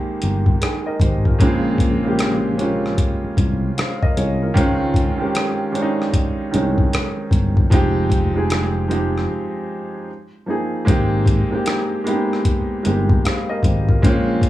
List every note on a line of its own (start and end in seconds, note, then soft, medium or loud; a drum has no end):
0.00 1.42 D#3 medium
0.00 1.40 G#3 medium
0.00 1.41 A#3 medium
0.00 1.42 C4 medium
0.00 0.62 D#4 medium
0.00 1.02 G4 loud
0.00 0.61 G#4 medium
0.22 0.55 G1 medium
0.22 closed hi-hat medium
0.46 kick medium
0.61 0.85 D#4 soft
0.61 0.85 G#4 medium
0.61 cross-stick medium
0.61 closed hi-hat medium
0.86 1.00 A#4 medium
0.86 1.00 D#5 medium
1.00 1.33 G#1 medium
1.00 1.25 G4 soft
1.00 1.25 C5 medium
1.00 kick medium
1.00 closed hi-hat medium
1.25 1.41 F4 soft
1.25 1.64 A#4 medium
1.25 kick medium
1.39 2.94 A#1 medium
1.39 1.95 C#3 medium
1.39 1.96 G#3 medium
1.39 1.96 A#3 medium
1.39 1.97 C4 medium
1.39 kick loud
1.39 closed hi-hat medium
1.43 1.97 F4 loud
1.78 kick medium
1.78 closed hi-hat medium
2.03 2.53 C#3 medium
2.03 2.53 G#3 medium
2.03 2.54 A#3 medium
2.03 2.54 C4 medium
2.08 2.55 G4 medium
2.19 cross-stick loud
2.19 closed hi-hat medium
2.57 4.03 G#3 medium
2.57 4.03 A#3 medium
2.57 4.04 C4 medium
2.57 4.02 C#4 medium
2.57 closed hi-hat soft
2.61 3.78 F4 medium
2.86 cross-stick soft
2.98 kick medium
2.98 closed hi-hat medium
3.24 muted fretless electric bass stroke soft
3.37 3.70 C2 medium
3.37 kick medium
3.37 closed hi-hat medium
3.78 4.01 C5 soft
3.78 4.01 F5 medium
3.78 cross-stick loud
3.78 closed hi-hat medium
4.02 4.16 A#4 medium
4.02 4.16 D#5 medium
4.02 kick medium
4.17 4.50 C2 medium
4.17 4.40 G#4 soft
4.17 4.40 C#5 medium
4.17 closed hi-hat medium
4.42 4.57 F4 soft
4.42 4.79 A#4 medium
4.54 5.09 C#2 medium
4.54 5.11 D#3 loud
4.54 5.11 G#3 medium
4.54 5.12 C4 medium
4.54 5.12 C#4 medium
4.54 kick loud
4.54 closed hi-hat medium
4.58 5.13 F4 loud
4.94 kick medium
4.94 closed hi-hat medium
5.18 5.68 D#3 medium
5.18 5.68 G#3 medium
5.18 5.69 C4 medium
5.18 5.69 C#4 medium
5.22 5.70 G4 medium
5.22 muted fretless electric bass stroke soft
5.35 cross-stick loud
5.35 closed hi-hat medium
5.72 6.45 D#3 medium
5.72 6.46 G#3 medium
5.72 6.46 C4 medium
5.72 6.47 C#4 medium
5.72 5.83 D4 medium
5.72 closed hi-hat soft
5.82 6.51 D#4 medium
6.02 cross-stick soft
6.13 kick medium
6.13 closed hi-hat medium
6.51 6.86 C2 medium
6.51 7.61 D#3 medium
6.51 7.61 G#3 medium
6.51 7.62 C4 medium
6.51 7.62 C#4 medium
6.51 7.62 D#4 medium
6.51 closed hi-hat medium
6.78 kick medium
6.93 cross-stick loud
6.93 closed hi-hat medium
7.31 7.65 G1 medium
7.31 kick medium
7.31 closed hi-hat medium
7.57 kick medium
7.70 9.26 F1 medium
7.70 8.27 F3 medium
7.70 8.27 G#3 medium
7.70 8.28 C4 medium
7.70 8.28 D#4 medium
7.70 kick loud
7.70 closed hi-hat medium
7.74 8.29 G4 loud
8.10 kick medium
8.10 closed hi-hat medium
8.34 8.84 F3 medium
8.34 8.84 G#3 medium
8.34 8.85 C4 medium
8.34 8.85 D#4 medium
8.34 8.86 G#4 medium
8.50 cross-stick loud
8.50 closed hi-hat medium
8.88 10.07 F3 medium
8.88 10.08 G#3 medium
8.88 10.08 C4 medium
8.88 10.09 D#4 medium
8.88 closed hi-hat soft
8.92 10.10 G4 medium
9.18 cross-stick soft
10.46 10.83 F3 medium
10.46 10.84 A#3 medium
10.46 10.84 C4 medium
10.46 10.85 D#4 medium
10.50 10.85 G#4 medium
10.85 11.41 G#1 medium
10.85 11.42 G#3 medium
10.85 11.43 A#3 medium
10.85 11.43 C4 medium
10.85 11.44 D#4 medium
10.85 kick loud
10.85 closed hi-hat medium
10.89 11.44 G4 loud
11.26 kick medium
11.26 closed hi-hat medium
11.50 12.00 G#3 medium
11.50 12.00 A#3 medium
11.50 12.01 C4 medium
11.50 12.02 D#4 medium
11.50 muted fretless electric bass stroke soft
11.54 12.02 G4 medium
11.66 cross-stick loud
11.66 closed hi-hat medium
12.04 12.77 G#3 medium
12.04 12.78 A#3 medium
12.04 12.14 B3 medium
12.04 12.79 D#4 medium
12.04 12.79 G4 medium
12.04 closed hi-hat soft
12.13 12.82 C4 medium
12.33 cross-stick soft
12.45 kick medium
12.45 closed hi-hat medium
12.83 13.18 G1 medium
12.83 13.92 G#3 medium
12.83 13.93 A#3 medium
12.83 13.93 C4 medium
12.83 13.94 D#4 medium
12.83 13.25 G4 medium
12.83 closed hi-hat medium
13.10 kick medium
13.25 13.49 C5 soft
13.25 13.48 F5 medium
13.25 cross-stick loud
13.25 closed hi-hat medium
13.49 13.63 A#4 medium
13.49 13.63 D#5 medium
13.63 13.96 G#1 medium
13.63 13.88 G4 soft
13.63 13.88 C5 medium
13.63 kick medium
13.63 closed hi-hat medium
13.89 14.05 F4 soft
13.89 14.26 A#4 medium
13.89 kick medium
14.02 14.49 A#1 medium
14.02 14.49 G#3 medium
14.02 14.49 A#3 medium
14.02 14.49 C4 medium
14.02 14.49 C#4 medium
14.02 14.49 F4 loud
14.02 kick loud
14.02 closed hi-hat medium
14.42 kick medium
14.42 closed hi-hat medium